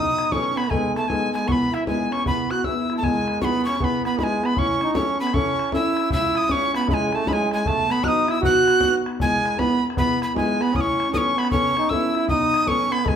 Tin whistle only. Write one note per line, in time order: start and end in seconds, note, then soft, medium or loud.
0.00 0.33 D#6 loud
0.32 0.59 C#6 loud
0.57 0.72 B5 medium
0.70 0.95 G#5 medium
0.96 1.10 A5 medium
1.08 1.33 G#5 medium
1.33 1.49 G#5 medium
1.48 1.53 C#6 medium
1.52 1.76 B5 loud
1.74 1.87 E5 medium
1.87 2.14 G#5 medium
2.12 2.26 C#6 medium
2.27 2.52 B5 medium
2.51 2.66 F#6 medium
2.65 2.96 E6 medium
2.97 3.05 A5 medium
3.04 3.41 G#5 loud
3.41 3.64 B5 loud
3.41 3.46 C#6 medium
3.65 3.80 C#6 medium
3.80 4.05 B5 loud
3.80 3.85 C#6 medium
4.05 4.18 B5 medium
4.19 4.25 B5 medium
4.24 4.47 G#5 medium
4.45 4.60 B5 loud
4.59 4.94 C#6 loud
4.95 5.18 C#6 loud
5.20 5.36 B5 loud
5.34 5.73 C#6 loud
5.74 6.10 E6 loud
6.13 6.39 E6 loud
6.37 6.53 D#6 loud
6.51 6.75 C#6 loud
6.75 6.88 B5 loud
6.90 7.16 G#5 loud
6.90 6.95 B5 medium
7.15 7.30 A5 medium
7.28 7.34 B5 medium
7.33 7.52 G#5 medium
7.53 7.69 G#5 loud
7.67 7.93 A5 loud
7.92 8.05 B5 loud
8.04 8.32 D#6 loud
8.04 8.09 F#6 loud
8.31 8.44 E6 loud
8.45 8.94 F#6 loud
9.22 9.60 G#5 loud
9.59 9.83 B5 loud
9.98 10.21 B5 loud
10.23 10.35 B5 medium
10.37 10.63 G#5 medium
10.62 10.77 B5 loud
10.76 10.82 D#6 loud
10.81 11.13 C#6 loud
11.14 11.40 C#6 loud
11.14 11.18 D#6 loud
11.39 11.51 B5 loud
11.51 11.91 C#6 loud
11.89 12.28 E6 loud
12.29 12.69 D#6 loud
12.68 12.94 C#6 loud
12.92 13.04 B5 loud
13.04 13.16 G#5 loud
13.04 13.09 B5 medium